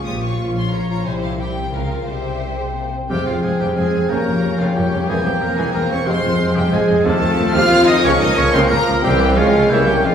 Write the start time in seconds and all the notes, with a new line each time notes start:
Already playing: C#4 F4
0.03 A#1 A#2 F3 F4 G4 C#5 D#6
0.20 F4 C#5 C#6
0.37 A#1 A#2 F3 F4
0.54 C#4 F4 C#5 C6
0.71 A#1 A#2 F4 C#5 A#5
0.87 C#4 F4 C#5 A#5
1.04 C2 C3 G3 E4 C5 G#5
1.21 E4 F5
1.38 G3 E4 G4 C5 G5
1.55 C4
1.71 C#2 C#3 A#3 F4 A#4 F5
1.90 F4 A#4
2.06 C2 C3 G3 G4 C5 E5
2.24 G4
2.41 G3
2.57 G#3 C4
2.75 A#3 G4
2.92 C4
3.10 F1 F2 C3 F3 G3 C4 G4 G#4 C5 G5 F6
3.27 F1 F2 F3 C4 F4 F5
3.43 F1 F2 G#3 G#4 C5 G#5
3.60 F1 F2 C3 G3 G4 G#4 G5
3.76 F1 F2 F3 G#3 C4 G#4 C5 G#5 F6
3.93 F1 F2 G#3 C5
4.09 F1 F2 C#3 F3 A#3 C#4 G4 A#4 C#5 A#5 G6
4.26 F1 F2 F3 C#4
4.43 F1 F2 G3 A#4
4.59 F1 F2 C#3 F3 F4 G4 F5
4.74 F1 F2 F3 G3 A#3 C#4 G4 C#5 G5 G6
4.91 F1 F2 G3 A#4
5.07 E1 E2 E3 G#3 A#3 C4 G#4 A#4 C5 G#5 G6
5.25 E1 E2 G3 C4 G4 G5
5.41 E1 E2 A#3 A#4 A#5
5.57 E1 E2 E3 G#3 G4 G#4 G#5
5.73 E1 E2 G3 A#3 C4 A#4 C5 A#5 G6
5.90 E1 E2 A#3 C#4 A#4 C#5 C#6
6.05 F1 F2 C3 F3 G#3 C4 G#4 C5 C6 F6
6.23 F1 F2 F3 F4
6.39 F1 F2 G#3 C5
6.55 F1 F2 C3 G3 G4 G#4 G5
6.71 F1 F2 F3 G#3 C4 F4 G#4 C5 G#5 F6
6.88 F1 F2 G#3 C5
7.04 D#2 C3 D#3 F3 A3 C4 F4 A4 C5 A5 F6
7.21 D#2 D#3 C4
7.38 D#2 F3 A4
7.53 D#2 C3 F4 F5 F6
7.71 D#2 D#3 C4
7.87 D#2 F3 D#4 A4 D#5 D#6
8.04 C#2 C#3 F3 A#3 C#4 F4 A#4 C#5 C#6 F6
8.20 C#2 C#3 A#3 D#4 D#5 D#6
8.36 C#2 F3 C#4 A#4 C#5 C#6
8.53 C#2 C#3 C4 F4 C5 C6
8.70 C#2 C#3 F3 A#3 F4 A#4 A#5 F6
8.87 C#2 F3 A#4
9.03 C2 C3 E3 G3 C4 E4 G4 C5 G5 E6
9.20 E4 G4
9.36 C#2 C#3 F3 G#3 C#4 F4 G#4 C#5 F5 F6
9.54 F4 C#5
9.70 C2 C3 E3 A#3 C#4 E4 A#4 C#5 E5 G6
9.87 G3 G4 C#5 G5
10.04 F1 F2 F3 G#3 C4 F4 G#4 C5 F5 F6